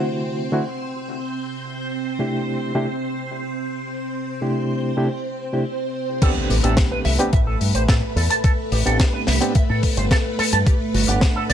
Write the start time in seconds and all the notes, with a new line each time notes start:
Already playing: D3 A3 C4 E4 F#4 C5
0.52 D3 A3 C4 E4 F#4
2.19 C3 A3 D4 E4 G4
2.75 C3 A3 D4 E4 G4
4.41 C3 A3 D4 E4 G4
4.97 C3 A3 D4 E4 G4
5.53 C3 A3 D4 E4 G4
6.22 A3 B3 C4 D4 G4 A4 B4, kick, closed hi-hat, crash, impact
6.49 A1 G4, open hi-hat
6.63 A1 B3 C4 D4 G4 A4, closed hi-hat
6.77 kick, snare, closed hi-hat
6.92 B4
7.05 C2 E5, open hi-hat
7.19 B3 C4 D4 G4, closed hi-hat
7.33 A1 E5, kick, closed hi-hat
7.47 A4
7.61 G2, open hi-hat
7.75 A1 C5, closed hi-hat
7.89 A2 A4, kick, snare, closed hi-hat
8.16 E2 A4, open hi-hat
8.30 A5, closed hi-hat
8.44 A4, kick, closed hi-hat
8.72 A1 G4, open hi-hat
8.86 A1 B3 C4 D4 G4 A4, closed hi-hat
9.00 kick, snare, closed hi-hat
9.14 B4
9.27 C2 E5, snare, open hi-hat
9.41 B3 C4 D4 G4, closed hi-hat
9.55 E5, kick, closed hi-hat
9.70 A2 A4
9.83 kick, open hi-hat
9.97 G1 C5, closed hi-hat
10.11 A4, kick, snare, closed hi-hat
10.39 A4, muted fingered electric bass stroke, open hi-hat
10.53 G2 A5, closed hi-hat
10.66 G4, kick, closed hi-hat
10.94 G1 F#4, open hi-hat
11.08 G1 A3 B3 D4 G4 F#5, closed hi-hat
11.21 kick, snare, closed hi-hat
11.36 A4
11.50 B1 D5, open hi-hat